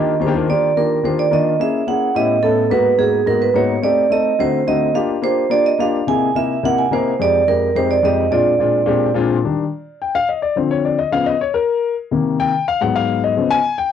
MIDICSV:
0, 0, Header, 1, 3, 480
1, 0, Start_track
1, 0, Key_signature, -3, "major"
1, 0, Tempo, 279720
1, 839, Time_signature, 4, 2, 24, 8
1, 23887, End_track
2, 0, Start_track
2, 0, Title_t, "Vibraphone"
2, 0, Program_c, 0, 11
2, 0, Note_on_c, 0, 75, 86
2, 291, Note_off_c, 0, 75, 0
2, 371, Note_on_c, 0, 72, 69
2, 811, Note_off_c, 0, 72, 0
2, 855, Note_on_c, 0, 74, 80
2, 1326, Note_on_c, 0, 70, 78
2, 1340, Note_off_c, 0, 74, 0
2, 1808, Note_on_c, 0, 72, 75
2, 1815, Note_off_c, 0, 70, 0
2, 1913, Note_off_c, 0, 72, 0
2, 2044, Note_on_c, 0, 74, 78
2, 2263, Note_off_c, 0, 74, 0
2, 2284, Note_on_c, 0, 75, 78
2, 2725, Note_off_c, 0, 75, 0
2, 2762, Note_on_c, 0, 76, 87
2, 3225, Note_on_c, 0, 78, 90
2, 3251, Note_off_c, 0, 76, 0
2, 3674, Note_off_c, 0, 78, 0
2, 3713, Note_on_c, 0, 75, 93
2, 4166, Note_on_c, 0, 69, 77
2, 4205, Note_off_c, 0, 75, 0
2, 4658, Note_on_c, 0, 71, 89
2, 4672, Note_off_c, 0, 69, 0
2, 5126, Note_on_c, 0, 68, 85
2, 5157, Note_off_c, 0, 71, 0
2, 5582, Note_off_c, 0, 68, 0
2, 5615, Note_on_c, 0, 70, 91
2, 5726, Note_off_c, 0, 70, 0
2, 5864, Note_on_c, 0, 71, 77
2, 6107, Note_on_c, 0, 73, 80
2, 6112, Note_off_c, 0, 71, 0
2, 6553, Note_off_c, 0, 73, 0
2, 6580, Note_on_c, 0, 74, 92
2, 7068, Note_on_c, 0, 75, 96
2, 7077, Note_off_c, 0, 74, 0
2, 7553, Note_on_c, 0, 72, 90
2, 7561, Note_off_c, 0, 75, 0
2, 7996, Note_off_c, 0, 72, 0
2, 8026, Note_on_c, 0, 75, 85
2, 8497, Note_on_c, 0, 77, 90
2, 8521, Note_off_c, 0, 75, 0
2, 8948, Note_off_c, 0, 77, 0
2, 8987, Note_on_c, 0, 72, 95
2, 9434, Note_off_c, 0, 72, 0
2, 9457, Note_on_c, 0, 74, 105
2, 9709, Note_off_c, 0, 74, 0
2, 9717, Note_on_c, 0, 75, 85
2, 9959, Note_off_c, 0, 75, 0
2, 9961, Note_on_c, 0, 77, 96
2, 10436, Note_on_c, 0, 80, 109
2, 10449, Note_off_c, 0, 77, 0
2, 10920, Note_on_c, 0, 76, 84
2, 10927, Note_off_c, 0, 80, 0
2, 11409, Note_off_c, 0, 76, 0
2, 11418, Note_on_c, 0, 78, 101
2, 11628, Note_off_c, 0, 78, 0
2, 11642, Note_on_c, 0, 80, 81
2, 11883, Note_off_c, 0, 80, 0
2, 11894, Note_on_c, 0, 72, 85
2, 12378, Note_off_c, 0, 72, 0
2, 12384, Note_on_c, 0, 74, 100
2, 12837, Note_on_c, 0, 70, 86
2, 12863, Note_off_c, 0, 74, 0
2, 13322, Note_on_c, 0, 72, 98
2, 13330, Note_off_c, 0, 70, 0
2, 13566, Note_off_c, 0, 72, 0
2, 13568, Note_on_c, 0, 74, 92
2, 13785, Note_off_c, 0, 74, 0
2, 13813, Note_on_c, 0, 75, 90
2, 14276, Note_on_c, 0, 74, 86
2, 14299, Note_off_c, 0, 75, 0
2, 15651, Note_off_c, 0, 74, 0
2, 23887, End_track
3, 0, Start_track
3, 0, Title_t, "Grand piano"
3, 0, Program_c, 1, 0
3, 0, Note_on_c, 1, 51, 82
3, 0, Note_on_c, 1, 58, 83
3, 0, Note_on_c, 1, 62, 76
3, 0, Note_on_c, 1, 65, 69
3, 0, Note_on_c, 1, 67, 86
3, 209, Note_off_c, 1, 51, 0
3, 216, Note_off_c, 1, 58, 0
3, 219, Note_off_c, 1, 62, 0
3, 219, Note_off_c, 1, 65, 0
3, 223, Note_off_c, 1, 67, 0
3, 339, Note_on_c, 1, 51, 76
3, 342, Note_on_c, 1, 58, 72
3, 358, Note_on_c, 1, 62, 67
3, 364, Note_on_c, 1, 65, 62
3, 374, Note_on_c, 1, 67, 77
3, 429, Note_off_c, 1, 51, 0
3, 435, Note_off_c, 1, 58, 0
3, 443, Note_off_c, 1, 62, 0
3, 446, Note_off_c, 1, 65, 0
3, 451, Note_off_c, 1, 67, 0
3, 455, Note_on_c, 1, 51, 90
3, 468, Note_on_c, 1, 58, 87
3, 475, Note_on_c, 1, 62, 82
3, 483, Note_on_c, 1, 65, 72
3, 491, Note_on_c, 1, 67, 103
3, 551, Note_off_c, 1, 51, 0
3, 558, Note_off_c, 1, 58, 0
3, 561, Note_off_c, 1, 62, 0
3, 565, Note_off_c, 1, 65, 0
3, 569, Note_off_c, 1, 67, 0
3, 586, Note_on_c, 1, 51, 87
3, 589, Note_on_c, 1, 58, 80
3, 592, Note_on_c, 1, 62, 76
3, 611, Note_on_c, 1, 65, 76
3, 612, Note_on_c, 1, 70, 82
3, 804, Note_off_c, 1, 51, 0
3, 814, Note_off_c, 1, 58, 0
3, 824, Note_off_c, 1, 62, 0
3, 830, Note_on_c, 1, 51, 69
3, 832, Note_off_c, 1, 65, 0
3, 840, Note_on_c, 1, 58, 65
3, 845, Note_off_c, 1, 70, 0
3, 850, Note_on_c, 1, 62, 67
3, 857, Note_on_c, 1, 65, 60
3, 861, Note_on_c, 1, 67, 80
3, 1169, Note_off_c, 1, 51, 0
3, 1175, Note_off_c, 1, 58, 0
3, 1180, Note_off_c, 1, 62, 0
3, 1183, Note_off_c, 1, 65, 0
3, 1185, Note_off_c, 1, 67, 0
3, 1302, Note_on_c, 1, 51, 55
3, 1315, Note_on_c, 1, 58, 62
3, 1321, Note_on_c, 1, 65, 61
3, 1325, Note_on_c, 1, 62, 55
3, 1334, Note_on_c, 1, 67, 60
3, 1645, Note_off_c, 1, 51, 0
3, 1651, Note_off_c, 1, 58, 0
3, 1655, Note_off_c, 1, 65, 0
3, 1656, Note_off_c, 1, 62, 0
3, 1661, Note_off_c, 1, 67, 0
3, 1770, Note_on_c, 1, 51, 63
3, 1779, Note_on_c, 1, 58, 60
3, 1787, Note_on_c, 1, 62, 60
3, 1790, Note_on_c, 1, 65, 66
3, 1807, Note_on_c, 1, 67, 74
3, 2119, Note_off_c, 1, 51, 0
3, 2123, Note_off_c, 1, 58, 0
3, 2127, Note_off_c, 1, 62, 0
3, 2129, Note_off_c, 1, 65, 0
3, 2137, Note_off_c, 1, 67, 0
3, 2246, Note_on_c, 1, 51, 74
3, 2255, Note_on_c, 1, 58, 65
3, 2259, Note_on_c, 1, 62, 72
3, 2270, Note_on_c, 1, 65, 63
3, 2277, Note_on_c, 1, 70, 73
3, 2596, Note_off_c, 1, 51, 0
3, 2600, Note_off_c, 1, 58, 0
3, 2602, Note_off_c, 1, 62, 0
3, 2607, Note_off_c, 1, 65, 0
3, 2611, Note_off_c, 1, 70, 0
3, 2730, Note_on_c, 1, 58, 63
3, 2737, Note_on_c, 1, 61, 61
3, 2750, Note_on_c, 1, 64, 66
3, 2763, Note_on_c, 1, 68, 73
3, 3077, Note_off_c, 1, 58, 0
3, 3081, Note_off_c, 1, 61, 0
3, 3087, Note_off_c, 1, 64, 0
3, 3093, Note_off_c, 1, 68, 0
3, 3207, Note_on_c, 1, 58, 65
3, 3211, Note_on_c, 1, 61, 53
3, 3229, Note_on_c, 1, 64, 57
3, 3240, Note_on_c, 1, 68, 68
3, 3555, Note_off_c, 1, 58, 0
3, 3557, Note_off_c, 1, 61, 0
3, 3566, Note_off_c, 1, 64, 0
3, 3571, Note_off_c, 1, 68, 0
3, 3684, Note_on_c, 1, 45, 71
3, 3698, Note_on_c, 1, 59, 63
3, 3705, Note_on_c, 1, 61, 65
3, 3711, Note_on_c, 1, 64, 71
3, 3717, Note_on_c, 1, 67, 80
3, 4033, Note_off_c, 1, 45, 0
3, 4040, Note_off_c, 1, 59, 0
3, 4043, Note_off_c, 1, 61, 0
3, 4046, Note_off_c, 1, 64, 0
3, 4049, Note_off_c, 1, 67, 0
3, 4165, Note_on_c, 1, 45, 67
3, 4167, Note_on_c, 1, 59, 69
3, 4176, Note_on_c, 1, 61, 64
3, 4179, Note_on_c, 1, 64, 66
3, 4194, Note_on_c, 1, 69, 81
3, 4513, Note_off_c, 1, 45, 0
3, 4514, Note_off_c, 1, 59, 0
3, 4519, Note_off_c, 1, 61, 0
3, 4520, Note_off_c, 1, 64, 0
3, 4527, Note_off_c, 1, 69, 0
3, 4634, Note_on_c, 1, 44, 64
3, 4636, Note_on_c, 1, 58, 74
3, 4648, Note_on_c, 1, 59, 71
3, 4664, Note_on_c, 1, 63, 69
3, 4669, Note_on_c, 1, 66, 90
3, 4987, Note_off_c, 1, 44, 0
3, 4988, Note_off_c, 1, 58, 0
3, 4994, Note_off_c, 1, 59, 0
3, 5002, Note_off_c, 1, 63, 0
3, 5004, Note_off_c, 1, 66, 0
3, 5110, Note_on_c, 1, 44, 64
3, 5123, Note_on_c, 1, 58, 59
3, 5138, Note_on_c, 1, 59, 54
3, 5142, Note_on_c, 1, 63, 56
3, 5144, Note_on_c, 1, 66, 70
3, 5465, Note_off_c, 1, 44, 0
3, 5471, Note_off_c, 1, 58, 0
3, 5479, Note_off_c, 1, 59, 0
3, 5481, Note_off_c, 1, 63, 0
3, 5482, Note_off_c, 1, 66, 0
3, 5597, Note_on_c, 1, 44, 75
3, 5609, Note_on_c, 1, 58, 58
3, 5614, Note_on_c, 1, 59, 61
3, 5621, Note_on_c, 1, 63, 66
3, 5629, Note_on_c, 1, 66, 69
3, 5948, Note_off_c, 1, 44, 0
3, 5953, Note_off_c, 1, 58, 0
3, 5956, Note_off_c, 1, 59, 0
3, 5960, Note_off_c, 1, 63, 0
3, 5964, Note_off_c, 1, 66, 0
3, 6075, Note_on_c, 1, 44, 80
3, 6078, Note_on_c, 1, 58, 66
3, 6090, Note_on_c, 1, 59, 72
3, 6103, Note_on_c, 1, 63, 67
3, 6112, Note_on_c, 1, 66, 92
3, 6427, Note_off_c, 1, 44, 0
3, 6428, Note_off_c, 1, 58, 0
3, 6434, Note_off_c, 1, 59, 0
3, 6441, Note_off_c, 1, 63, 0
3, 6445, Note_off_c, 1, 66, 0
3, 6558, Note_on_c, 1, 57, 68
3, 6574, Note_on_c, 1, 60, 60
3, 6587, Note_on_c, 1, 63, 66
3, 6594, Note_on_c, 1, 67, 78
3, 6908, Note_off_c, 1, 57, 0
3, 6916, Note_off_c, 1, 60, 0
3, 6922, Note_off_c, 1, 63, 0
3, 6926, Note_off_c, 1, 67, 0
3, 7033, Note_on_c, 1, 57, 63
3, 7046, Note_on_c, 1, 60, 63
3, 7058, Note_on_c, 1, 63, 59
3, 7070, Note_on_c, 1, 69, 71
3, 7385, Note_off_c, 1, 57, 0
3, 7392, Note_off_c, 1, 60, 0
3, 7398, Note_off_c, 1, 63, 0
3, 7404, Note_off_c, 1, 69, 0
3, 7527, Note_on_c, 1, 50, 74
3, 7534, Note_on_c, 1, 57, 65
3, 7535, Note_on_c, 1, 60, 71
3, 7546, Note_on_c, 1, 63, 58
3, 7555, Note_on_c, 1, 66, 80
3, 7872, Note_off_c, 1, 50, 0
3, 7876, Note_off_c, 1, 57, 0
3, 7876, Note_off_c, 1, 60, 0
3, 7882, Note_off_c, 1, 63, 0
3, 7886, Note_off_c, 1, 66, 0
3, 8008, Note_on_c, 1, 50, 72
3, 8016, Note_on_c, 1, 57, 70
3, 8022, Note_on_c, 1, 63, 61
3, 8023, Note_on_c, 1, 60, 65
3, 8038, Note_on_c, 1, 66, 75
3, 8353, Note_off_c, 1, 50, 0
3, 8357, Note_off_c, 1, 57, 0
3, 8360, Note_off_c, 1, 60, 0
3, 8360, Note_off_c, 1, 63, 0
3, 8368, Note_off_c, 1, 66, 0
3, 8473, Note_on_c, 1, 58, 68
3, 8489, Note_on_c, 1, 62, 60
3, 8501, Note_on_c, 1, 65, 64
3, 8506, Note_on_c, 1, 67, 84
3, 8826, Note_off_c, 1, 58, 0
3, 8834, Note_off_c, 1, 62, 0
3, 8840, Note_off_c, 1, 65, 0
3, 8842, Note_off_c, 1, 67, 0
3, 8952, Note_on_c, 1, 58, 71
3, 8963, Note_on_c, 1, 62, 57
3, 8976, Note_on_c, 1, 65, 54
3, 8990, Note_on_c, 1, 67, 69
3, 9305, Note_off_c, 1, 58, 0
3, 9311, Note_off_c, 1, 62, 0
3, 9317, Note_off_c, 1, 65, 0
3, 9324, Note_off_c, 1, 67, 0
3, 9429, Note_on_c, 1, 58, 71
3, 9441, Note_on_c, 1, 62, 63
3, 9450, Note_on_c, 1, 65, 61
3, 9460, Note_on_c, 1, 67, 67
3, 9784, Note_off_c, 1, 58, 0
3, 9790, Note_off_c, 1, 62, 0
3, 9794, Note_off_c, 1, 65, 0
3, 9799, Note_off_c, 1, 67, 0
3, 9927, Note_on_c, 1, 58, 75
3, 9945, Note_on_c, 1, 62, 69
3, 9950, Note_on_c, 1, 65, 67
3, 9961, Note_on_c, 1, 67, 77
3, 10273, Note_off_c, 1, 58, 0
3, 10283, Note_off_c, 1, 62, 0
3, 10285, Note_off_c, 1, 65, 0
3, 10291, Note_off_c, 1, 67, 0
3, 10416, Note_on_c, 1, 48, 74
3, 10425, Note_on_c, 1, 58, 63
3, 10430, Note_on_c, 1, 63, 64
3, 10439, Note_on_c, 1, 64, 57
3, 10449, Note_on_c, 1, 68, 77
3, 10758, Note_off_c, 1, 48, 0
3, 10763, Note_off_c, 1, 58, 0
3, 10766, Note_off_c, 1, 63, 0
3, 10770, Note_off_c, 1, 64, 0
3, 10775, Note_off_c, 1, 68, 0
3, 10885, Note_on_c, 1, 48, 63
3, 10899, Note_on_c, 1, 58, 59
3, 10905, Note_on_c, 1, 63, 61
3, 10918, Note_on_c, 1, 64, 60
3, 10922, Note_on_c, 1, 70, 69
3, 11234, Note_off_c, 1, 48, 0
3, 11240, Note_off_c, 1, 58, 0
3, 11243, Note_off_c, 1, 63, 0
3, 11250, Note_off_c, 1, 64, 0
3, 11252, Note_off_c, 1, 70, 0
3, 11378, Note_on_c, 1, 48, 82
3, 11384, Note_on_c, 1, 58, 70
3, 11397, Note_on_c, 1, 63, 61
3, 11404, Note_on_c, 1, 64, 70
3, 11414, Note_on_c, 1, 70, 75
3, 11720, Note_off_c, 1, 48, 0
3, 11723, Note_off_c, 1, 58, 0
3, 11730, Note_off_c, 1, 63, 0
3, 11734, Note_off_c, 1, 64, 0
3, 11738, Note_off_c, 1, 70, 0
3, 11853, Note_on_c, 1, 48, 74
3, 11865, Note_on_c, 1, 58, 75
3, 11872, Note_on_c, 1, 63, 76
3, 11877, Note_on_c, 1, 64, 65
3, 11887, Note_on_c, 1, 70, 91
3, 12198, Note_off_c, 1, 48, 0
3, 12204, Note_off_c, 1, 58, 0
3, 12208, Note_off_c, 1, 63, 0
3, 12210, Note_off_c, 1, 64, 0
3, 12215, Note_off_c, 1, 70, 0
3, 12342, Note_on_c, 1, 41, 71
3, 12353, Note_on_c, 1, 56, 71
3, 12362, Note_on_c, 1, 60, 66
3, 12372, Note_on_c, 1, 63, 67
3, 12378, Note_on_c, 1, 67, 76
3, 12683, Note_off_c, 1, 41, 0
3, 12689, Note_off_c, 1, 56, 0
3, 12693, Note_off_c, 1, 60, 0
3, 12698, Note_off_c, 1, 63, 0
3, 12701, Note_off_c, 1, 67, 0
3, 12827, Note_on_c, 1, 41, 61
3, 12835, Note_on_c, 1, 56, 57
3, 12836, Note_on_c, 1, 60, 54
3, 12845, Note_on_c, 1, 63, 53
3, 12861, Note_on_c, 1, 67, 66
3, 13167, Note_off_c, 1, 41, 0
3, 13170, Note_off_c, 1, 56, 0
3, 13171, Note_off_c, 1, 60, 0
3, 13176, Note_off_c, 1, 63, 0
3, 13183, Note_off_c, 1, 67, 0
3, 13302, Note_on_c, 1, 41, 70
3, 13316, Note_on_c, 1, 56, 65
3, 13321, Note_on_c, 1, 60, 63
3, 13326, Note_on_c, 1, 63, 67
3, 13335, Note_on_c, 1, 67, 77
3, 13645, Note_off_c, 1, 41, 0
3, 13651, Note_off_c, 1, 56, 0
3, 13654, Note_off_c, 1, 60, 0
3, 13657, Note_off_c, 1, 63, 0
3, 13661, Note_off_c, 1, 67, 0
3, 13776, Note_on_c, 1, 41, 76
3, 13794, Note_on_c, 1, 56, 74
3, 13801, Note_on_c, 1, 60, 66
3, 13804, Note_on_c, 1, 63, 64
3, 13817, Note_on_c, 1, 67, 90
3, 14122, Note_off_c, 1, 41, 0
3, 14131, Note_off_c, 1, 56, 0
3, 14135, Note_off_c, 1, 60, 0
3, 14136, Note_off_c, 1, 63, 0
3, 14142, Note_off_c, 1, 67, 0
3, 14255, Note_on_c, 1, 46, 70
3, 14267, Note_on_c, 1, 56, 66
3, 14276, Note_on_c, 1, 60, 67
3, 14277, Note_on_c, 1, 62, 66
3, 14286, Note_on_c, 1, 65, 77
3, 14602, Note_off_c, 1, 46, 0
3, 14608, Note_off_c, 1, 56, 0
3, 14612, Note_off_c, 1, 60, 0
3, 14613, Note_off_c, 1, 62, 0
3, 14617, Note_off_c, 1, 65, 0
3, 14736, Note_on_c, 1, 46, 69
3, 14746, Note_on_c, 1, 56, 62
3, 14755, Note_on_c, 1, 60, 62
3, 14758, Note_on_c, 1, 62, 60
3, 14768, Note_on_c, 1, 65, 74
3, 15083, Note_off_c, 1, 46, 0
3, 15088, Note_off_c, 1, 56, 0
3, 15093, Note_off_c, 1, 60, 0
3, 15094, Note_off_c, 1, 62, 0
3, 15099, Note_off_c, 1, 65, 0
3, 15204, Note_on_c, 1, 46, 92
3, 15217, Note_on_c, 1, 56, 83
3, 15223, Note_on_c, 1, 60, 80
3, 15227, Note_on_c, 1, 62, 74
3, 15236, Note_on_c, 1, 67, 91
3, 15558, Note_off_c, 1, 46, 0
3, 15564, Note_off_c, 1, 56, 0
3, 15567, Note_off_c, 1, 60, 0
3, 15569, Note_off_c, 1, 62, 0
3, 15574, Note_off_c, 1, 67, 0
3, 15689, Note_on_c, 1, 46, 90
3, 15692, Note_on_c, 1, 56, 77
3, 15701, Note_on_c, 1, 60, 80
3, 15704, Note_on_c, 1, 62, 76
3, 15718, Note_on_c, 1, 65, 94
3, 16041, Note_off_c, 1, 46, 0
3, 16042, Note_off_c, 1, 56, 0
3, 16047, Note_off_c, 1, 60, 0
3, 16048, Note_off_c, 1, 62, 0
3, 16056, Note_off_c, 1, 65, 0
3, 16198, Note_on_c, 1, 51, 53
3, 16208, Note_on_c, 1, 55, 39
3, 16212, Note_on_c, 1, 62, 57
3, 16519, Note_off_c, 1, 51, 0
3, 16524, Note_off_c, 1, 55, 0
3, 16526, Note_off_c, 1, 62, 0
3, 17187, Note_on_c, 1, 79, 66
3, 17408, Note_off_c, 1, 79, 0
3, 17417, Note_on_c, 1, 77, 91
3, 17644, Note_off_c, 1, 77, 0
3, 17654, Note_on_c, 1, 75, 64
3, 17882, Note_off_c, 1, 75, 0
3, 17885, Note_on_c, 1, 74, 76
3, 18114, Note_on_c, 1, 50, 48
3, 18118, Note_off_c, 1, 74, 0
3, 18126, Note_on_c, 1, 53, 49
3, 18133, Note_on_c, 1, 72, 56
3, 18140, Note_on_c, 1, 60, 56
3, 18362, Note_off_c, 1, 72, 0
3, 18375, Note_on_c, 1, 73, 77
3, 18604, Note_off_c, 1, 73, 0
3, 18617, Note_on_c, 1, 74, 63
3, 18805, Note_off_c, 1, 50, 0
3, 18811, Note_off_c, 1, 53, 0
3, 18818, Note_off_c, 1, 60, 0
3, 18845, Note_off_c, 1, 74, 0
3, 18852, Note_on_c, 1, 75, 79
3, 19071, Note_on_c, 1, 49, 48
3, 19082, Note_off_c, 1, 75, 0
3, 19085, Note_on_c, 1, 53, 41
3, 19089, Note_on_c, 1, 77, 86
3, 19098, Note_on_c, 1, 59, 53
3, 19321, Note_off_c, 1, 77, 0
3, 19325, Note_on_c, 1, 75, 89
3, 19398, Note_off_c, 1, 49, 0
3, 19405, Note_off_c, 1, 53, 0
3, 19412, Note_off_c, 1, 59, 0
3, 19559, Note_off_c, 1, 75, 0
3, 19580, Note_on_c, 1, 73, 74
3, 19803, Note_on_c, 1, 70, 86
3, 19807, Note_off_c, 1, 73, 0
3, 20475, Note_off_c, 1, 70, 0
3, 20784, Note_on_c, 1, 48, 54
3, 20790, Note_on_c, 1, 51, 49
3, 20800, Note_on_c, 1, 58, 59
3, 21275, Note_on_c, 1, 79, 96
3, 21460, Note_off_c, 1, 48, 0
3, 21464, Note_off_c, 1, 51, 0
3, 21469, Note_off_c, 1, 58, 0
3, 21709, Note_off_c, 1, 79, 0
3, 21760, Note_on_c, 1, 77, 88
3, 21977, Note_off_c, 1, 77, 0
3, 21982, Note_on_c, 1, 44, 56
3, 21990, Note_on_c, 1, 54, 41
3, 21992, Note_on_c, 1, 78, 79
3, 22000, Note_on_c, 1, 59, 55
3, 22213, Note_off_c, 1, 78, 0
3, 22234, Note_on_c, 1, 77, 84
3, 22667, Note_off_c, 1, 77, 0
3, 22717, Note_on_c, 1, 75, 77
3, 22886, Note_off_c, 1, 44, 0
3, 22890, Note_off_c, 1, 54, 0
3, 22896, Note_off_c, 1, 59, 0
3, 22938, Note_on_c, 1, 49, 51
3, 22948, Note_on_c, 1, 53, 45
3, 22960, Note_on_c, 1, 59, 55
3, 23175, Note_on_c, 1, 80, 97
3, 23251, Note_off_c, 1, 49, 0
3, 23257, Note_off_c, 1, 53, 0
3, 23263, Note_off_c, 1, 59, 0
3, 23372, Note_off_c, 1, 75, 0
3, 23616, Note_off_c, 1, 80, 0
3, 23648, Note_on_c, 1, 79, 88
3, 23879, Note_off_c, 1, 79, 0
3, 23887, End_track
0, 0, End_of_file